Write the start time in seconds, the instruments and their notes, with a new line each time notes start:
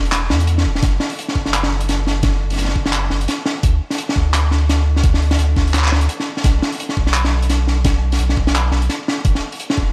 Already playing: sub bass E1
0.05 open hi-hat
0.12 clap, snare, closed hi-hat
0.30 sub bass E2, snare
0.40 closed hi-hat
0.47 closed hi-hat
0.58 snare
0.65 sub bass E1
0.75 snare
0.83 sub bass F#1, kick, snare, closed hi-hat
1.00 snare
1.10 open hi-hat
1.19 closed hi-hat
1.28 snare
1.35 sub bass F#1, kick
1.46 snare
1.53 clap, closed hi-hat
1.63 snare
1.80 closed hi-hat
1.89 snare, closed hi-hat
2.07 snare
2.23 kick, snare, closed hi-hat
2.50 snare, open hi-hat
2.53 snare
2.56 sub bass F#1, snare, closed hi-hat
2.59 snare
2.62 snare
2.65 snare
2.69 snare
2.76 sub bass F#1, kick
2.86 snare
2.93 clap, closed hi-hat
3.10 sub bass F#1, snare
3.21 closed hi-hat
3.28 snare, closed hi-hat
3.46 snare
3.63 sub bass D2, kick, closed hi-hat
3.90 snare, open hi-hat
3.98 closed hi-hat
4.09 snare
4.16 sub bass D2, kick
4.34 clap, snare, closed hi-hat
4.51 snare
4.69 snare, closed hi-hat
4.96 snare
5.03 kick, closed hi-hat
5.14 snare
5.22 open hi-hat
5.31 snare, open hi-hat
5.39 sub bass D2, closed hi-hat
5.56 sub bass D2, kick, snare
5.67 open hi-hat
5.74 clap, snare, closed hi-hat
5.79 clap
5.84 clap
5.88 clap
5.92 sub bass D2, snare
6.01 closed hi-hat
6.09 closed hi-hat
6.20 snare
6.37 snare
6.44 sub bass B1, kick, snare, closed hi-hat
6.62 snare
6.72 open hi-hat
6.80 closed hi-hat
6.89 snare
6.97 sub bass B1, kick
7.07 snare
7.14 clap, closed hi-hat
7.25 snare
7.42 closed hi-hat
7.50 snare, closed hi-hat
7.67 snare
7.85 kick, snare, closed hi-hat
8.12 snare, open hi-hat
8.19 sub bass B1, closed hi-hat
8.29 snare
8.37 sub bass B1, kick
8.47 snare
8.55 clap, closed hi-hat
8.71 sub bass B1, snare
8.82 closed hi-hat
8.89 snare, closed hi-hat
9.08 snare
9.25 sub bass E1, kick, closed hi-hat
9.35 snare
9.52 open hi-hat
9.60 closed hi-hat
9.70 snare
9.78 sub bass E1, kick